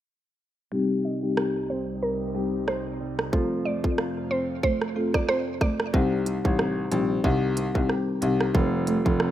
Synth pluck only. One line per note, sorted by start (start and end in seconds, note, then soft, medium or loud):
1.05 1.18 D#5 medium
1.70 1.83 C5 medium
2.03 2.50 A#4 medium
2.68 3.16 C5 medium
3.65 3.79 D5 medium
4.31 4.44 C5 medium
4.63 4.77 C5 medium
5.14 5.25 D5 medium
5.29 5.42 C5 medium
5.61 5.75 D5 medium